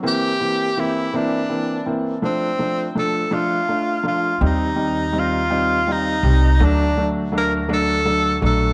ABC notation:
X:1
M:6/8
L:1/8
Q:3/8=55
K:Eblyd
V:1 name="Tenor saxophone"
G2 =E D2 z | C2 A F2 F | E2 F2 E2 | D z B A2 A |]
V:2 name="Felt piano"
[=E,B,C] [E,B,C] [E,B,C] [E,B,C] [E,B,C] [E,B,C] | [F,A,D] [F,A,D] [F,A,D] [F,A,D] [A,D] [F,A,D] | [G,CE] [G,CE] [G,CE] [G,CE] [G,CE] [G,CE] | [^F,A,D] [F,A,D] [F,A,D] [F,A,D] [F,A,D] [F,A,D] |]
V:3 name="Upright bass" clef=bass
z6 | z6 | E,,4- E,, C,, | D,,4- D,, B,,, |]